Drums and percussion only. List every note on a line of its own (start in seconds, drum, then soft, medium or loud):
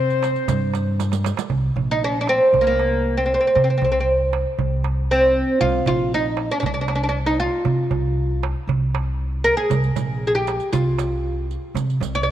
0.10 riq soft
0.23 riq soft
0.23 darbuka tek medium
0.36 riq soft
0.36 darbuka ka soft
0.48 riq medium
0.48 darbuka dum medium
0.74 riq soft
0.74 darbuka tek medium
1.00 riq medium
1.00 darbuka tek medium
1.12 riq medium
1.12 darbuka ka medium
1.24 riq medium
1.24 darbuka tek medium
1.37 riq medium
1.37 darbuka ka medium
1.50 darbuka dum medium
1.77 darbuka dum medium
2.02 darbuka ka soft
2.27 darbuka tek medium
2.41 darbuka ka soft
2.54 darbuka dum medium
2.79 darbuka tek medium
3.56 darbuka dum medium
3.82 darbuka dum medium
4.08 darbuka ka soft
4.33 darbuka tek medium
4.46 darbuka ka soft
4.59 darbuka dum medium
4.84 darbuka tek medium
5.61 darbuka dum medium
5.86 darbuka dum medium
6.11 darbuka ka soft
6.37 darbuka tek medium
6.50 darbuka ka soft
6.63 darbuka dum medium
6.88 darbuka tek medium
7.65 darbuka dum medium
7.79 darbuka ka soft
7.91 darbuka dum medium
8.17 darbuka ka soft
8.30 darbuka ka soft
8.43 darbuka tek medium
8.56 darbuka ka soft
8.69 darbuka dum medium
8.95 darbuka tek medium
9.33 darbuka ka soft
9.58 darbuka ka soft
9.71 riq medium
9.71 darbuka dum loud
9.84 riq soft
9.96 riq soft
9.96 darbuka dum medium
10.22 darbuka ka soft
10.47 riq soft
10.47 darbuka tek medium
10.60 riq soft
10.60 darbuka ka soft
10.73 riq medium
10.73 darbuka dum medium
10.98 riq soft
10.98 darbuka tek medium
11.51 riq soft
11.75 riq medium
11.75 darbuka dum medium
11.90 riq soft
12.01 riq medium
12.01 darbuka dum medium
12.27 darbuka ka soft